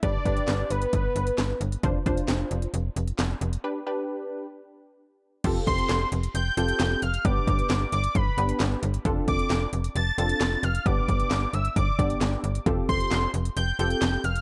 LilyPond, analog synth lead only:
\new Staff \with { instrumentName = "Analog synth lead" } { \time 4/4 \key g \mixolydian \tempo 4 = 133 d''4. b'2 r8 | r1 | r1 | r8 c'''4 r8 g'''8 g'''4 f'''8 |
d'''4. d'''8 b''4 r4 | r8 d'''4 r8 a'''8 a'''4 f'''8 | d'''4. e'''8 d'''4 r4 | r8 c'''4 r8 g'''8 g'''4 f'''8 | }